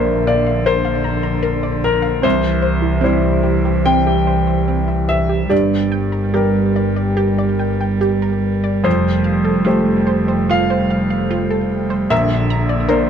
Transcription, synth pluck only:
0.27 F5
0.47 F5
0.66 A#4
0.85 F5
1.04 A#5
1.23 A#5
1.43 A#4
1.63 D5
2.02 F5
2.22 C4
2.62 C5
2.82 E4
3.01 C4
3.43 G4
3.65 G4
3.86 C4
4.07 G4
4.27 C5
4.47 C5
4.68 C4
4.88 E4
5.29 G4
5.50 G4
5.92 G5
6.12 A#4
6.34 G4
6.76 D5
6.96 D5
7.17 G4
7.38 D5
7.59 G5
7.81 G5
8.01 G4
8.22 A#4
8.64 D5
8.84 F4
9.24 F5
9.44 A4
9.65 F4
10.07 C5
10.28 C5
10.49 F4
10.70 C5
10.90 F5
11.10 F5
11.31 F4
11.51 A4
11.90 C5
12.11 A#4
12.50 A#5
12.69 D5
12.88 A#4

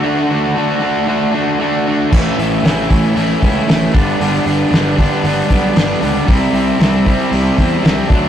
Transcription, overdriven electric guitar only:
0.03 D3 A3 D4 F#4
0.30 A3 D4 F#4
0.56 D3 A3 D4 F#4
0.80 D3 A3 D4 F#4
1.08 D3 A3 D4 F#4
1.32 A3 D4 F#4
1.59 D3 A3 D4 F#4
1.86 A3 D4 F#4
2.11 A2 E3 A3 C#4 E4
2.38 A3 C#4 E4
2.63 E3 A3 C#4 E4
2.89 A2 E3 A3 C#4 E4
3.15 E3 A3 C#4 E4
3.41 A3 C#4 E4
3.67 A2 E3 A3 C#4 E4
3.94 G2 D3 G3 B3 D4
4.20 G2 D3 G3 B3 D4
4.46 G3 B3 D4
4.71 D3 G3 B3 D4
4.97 G2 D3 G3 B3 D4
5.24 D3 G3 B3 D4
5.49 G3 B3 D4
5.74 G2 D3 G3 B3 D4
6.01 G3 B3 D4
6.27 C3 G3 C4 E4
6.53 G3 C4 E4
6.79 C3 G3 C4 E4
7.06 C3 G3 C4 E4
7.32 C3 G3 C4 E4
7.57 G3 C4 E4
7.83 C3 G3 C4 E4
8.09 D3 F#3 A3 D4

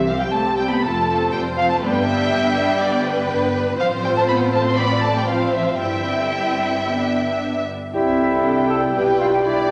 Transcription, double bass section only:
Already playing: C2
0.33 C2
0.84 F1
1.33 F1
1.83 G1
2.32 G1
2.81 G1
3.30 G1
3.79 A1
5.81 G1
7.94 C2
8.95 B1

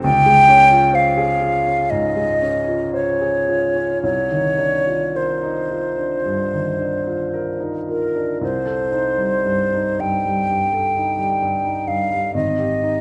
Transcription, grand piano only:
0.04 C#2
0.26 G#3
0.48 C#4
0.71 F4
0.93 C5
1.17 G#4
1.42 F4
1.67 C#4
1.91 G#2
2.16 G#3
2.42 C#4
2.68 F4
2.94 C5
3.21 G#4
3.49 F4
3.76 C#4
4.03 C2
4.31 D#3
4.59 D4
4.87 F4
5.15 A#4
5.43 D#4
5.71 F4
5.98 D4
6.26 G2
6.54 D#3
6.80 D4
7.07 F4
7.34 A#4
7.60 D#4
7.88 F4
8.16 D4
8.41 C2
8.65 A4
8.91 D#4
9.18 G3
9.45 G2
9.73 D#4
9.99 G2
10.26 G3
10.50 G2
10.73 A4
10.96 D#4
11.19 G3
11.42 G2
11.65 D#4
11.88 G2
12.11 G3
12.34 G#1
12.59 G4
12.83 D#4

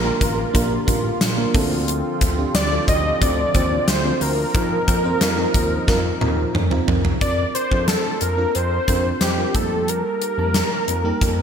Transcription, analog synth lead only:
Already playing: A#4
2.55 D5
2.88 D#5
3.22 D5
3.89 C5
4.22 A#4
7.21 D5
7.55 C5
7.88 A4
8.21 A#4
8.55 C5
9.22 G4
9.56 A4
9.89 A#4

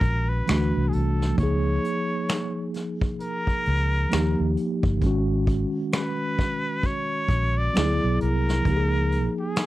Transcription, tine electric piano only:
Already playing: D#3 G#3 C#4 F#4
0.46 E3 A3 D4
0.50 F#4
1.35 F3 A#3
1.40 D#4 G#4
4.09 F3 A#3 D#4
4.13 G4
4.98 D#3 G#3
5.04 C#4 F#4
7.74 F#3 B3 E4 G#4
8.62 F3 A#3
8.68 D#4 G4
8.77 G#4

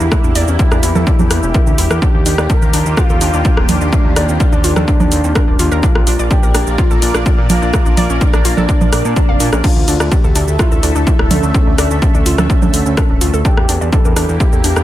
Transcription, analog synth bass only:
0.00 E2
0.24 E2
0.35 E2
0.48 E2
0.72 E2
0.83 E2
0.95 E2
1.19 E2
1.31 E2
1.43 E1
1.67 D2
1.78 E1
1.91 E2
2.14 D#2
2.26 D#2
2.38 D#2
2.62 D#2
2.74 D#2
2.86 D#2
3.10 D#2
3.21 D#2
3.33 D#2
3.57 D#1
3.69 D#2
3.81 D#2
4.05 D#2
4.16 D#2
4.29 D#2
4.52 D#2
4.64 D#2
4.76 D#2
5.00 D#2
5.12 D#2
5.24 D#2
5.48 D#1
5.59 D#2
5.72 D#2
5.95 A#1
6.07 A#1
6.19 A#1
6.43 A#1
6.55 A#1
6.67 A#1
6.91 A#1
7.02 A#1
7.14 A#1
7.38 A#2
7.50 A#1
7.62 A#1
7.86 A#1
7.97 A#1
8.10 A#1
8.34 A#1
8.45 A#1
8.57 A#1
8.81 A#1
8.93 A#1
9.05 A#2
9.29 F1
9.40 A#2
9.52 A#1
9.76 D2
9.88 D2
10.00 D2
10.24 D2
10.35 D2
10.48 D2
10.72 D2
10.83 D2
10.95 D2
11.19 D1
11.31 D2
11.43 D2
11.67 D2
11.78 D2
11.91 D2
12.14 D2
12.26 D2
12.38 D2
12.62 D2
12.73 D2
12.86 D2
13.10 D1
13.21 D2
13.34 D2
13.57 E2
13.69 E2
13.81 E2
14.05 E2
14.16 E2
14.29 E2
14.53 E2
14.64 E2
14.76 E2

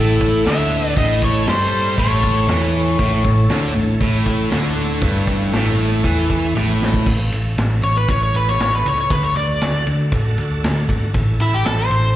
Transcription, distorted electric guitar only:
Already playing: A2
0.46 D3
0.96 A2
1.46 G3
1.98 A2
2.48 E3
2.99 A2
3.25 A2
3.50 D3
3.75 A2
4.01 A2
4.51 D3
5.02 G2
5.53 A2
6.05 E3
6.55 A2

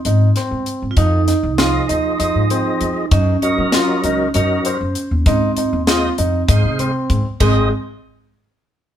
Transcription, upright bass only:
0.05 G#2
0.51 G#2
0.82 G#2
0.97 F2
1.43 C2
1.90 D#2
2.20 F2
2.35 G#2
2.81 F2
3.11 F#2
3.58 F#3
4.04 C#2
4.35 F#2
4.81 F#2
5.11 D#2
5.26 G#2
5.73 D#2
6.19 F2
6.48 G#2
6.65 C3
7.10 G#2
7.41 G#1

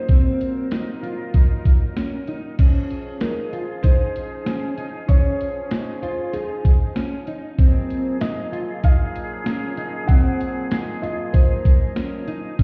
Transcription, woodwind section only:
Already playing: A#2 F#3 A#3 F4
0.10 A#4
2.58 F3 C#4 G#4
7.58 A#2 F3 F#3 A#3 G#4
10.09 A#4
12.59 F3 C#4 G#4

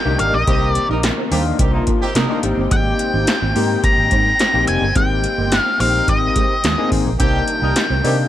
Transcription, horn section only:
0.47 D#3 C4 G4
0.89 G3 D#4 A#4
1.31 D#3 C4 G4
1.59 D#3 C4 G4
1.73 C3 A#3 D#4
2.01 D#3 C4 G4
2.15 G3 D#4 A#4
7.19 D#3 C4 G4
7.62 G3 D#4 A#4
8.04 D#3 C4 G4

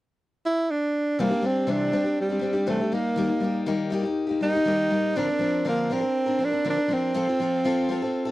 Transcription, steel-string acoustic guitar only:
1.19 C3 E3 G3 C4 D4 G4
1.29 G3 C4 D4 G4
1.41 G3 C4 D4 G4
1.67 C3 E3 G3 C4 D4 G4
1.92 G3 C4 D4 G4
2.04 G3 C4 D4 G4
2.29 G3 C4 D4 G4
2.39 G3 C4 D4 G4
2.53 G3 C4 D4 G4
2.66 C3 E3 G3 C4 D4 G4
2.81 G3 C4 D4 G4
2.92 G3 A#3 D#4 G4
3.16 D#3 G3 A#3 D#4 G4
3.27 A#3 D#4 G4
3.40 G3 A#3 D#4 G4
3.66 D#3 G3 A#3 D#4 G4
3.90 G3 A#3 D#4 G4
4.03 A#3 D#4 G4
4.27 A#3 D#4 G4
4.41 G3 A#3 D#4 G4
4.53 A#3 D#4 G4
4.65 D#3 G3 A#3 D#4 G4
4.90 G3 A#3 D#4 G4
5.16 D3 F3 C4 D4 A#4
5.27 C4 D4 A#4
5.39 F3 C4 D4 A#4
5.65 D3 F3 C4 D4 A#4
5.90 F3 C4 D4 A#4
6.01 C4 D4 A#4
6.26 C4 D4 A#4
6.39 F3 C4 D4 A#4
6.50 C4 D4 A#4
6.64 D3 F3 C4 D4 A#4
6.77 C4 D4 A#4
6.88 F3 C4 D4 A#4
7.14 F3 C4 F4 A4
7.27 C4 F4 A4
7.40 F3 C4 F4 A4
7.64 F3 C4 F4 A4
7.89 F3 C4 F4 A4
8.02 C4 F4 A4
8.25 F4 A4

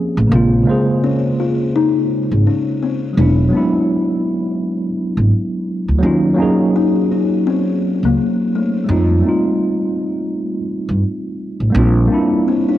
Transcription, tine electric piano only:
Already playing: F3 A#3 C4 C#4 G#4
0.28 C#3 G#3 A#3
0.34 C4 F4
0.63 C#3 G#3 A#3
0.69 G#4 C5
3.13 F#3 G#3
3.17 B3 D4
3.21 E4
3.49 F#3 G#3 B3
3.55 D4 E4
5.99 F#3 A#3
6.03 C#4 D#4 F4
6.34 F#3 A#3 C#4
6.40 D#4 G#4
8.84 G3 A3
8.89 C4 D#4 F4
9.21 G3 A3 C4
9.26 D#4 F4
11.70 G3 A#3
11.75 C4 D4 F4
12.06 G3 A#3
12.10 C4 D4 E4

